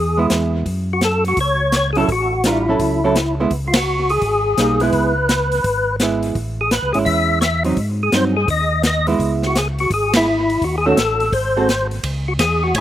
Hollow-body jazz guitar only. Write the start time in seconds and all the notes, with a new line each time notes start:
0.17 G#3 B3 E4
1.96 F#3 C#4 E4 A4
2.45 G3 D4 F4 A#4
2.68 F#3 C#4 E4 A4
3.04 F#3 C#4 E4 A4
3.40 G#3 B3 E4
4.59 G3 A#3 D#4
4.82 G#3 B3 E4
6.01 G#3 B3 E4
6.95 G#3 C#4 E4
7.64 F#3 C4 D#4
8.13 F#3 C4 D#4
9.07 G#3 B3 E4
10.15 G#3 B3 E4
10.86 D#3 A3 C#4 F#4
11.57 G#3 C4 F#4 A4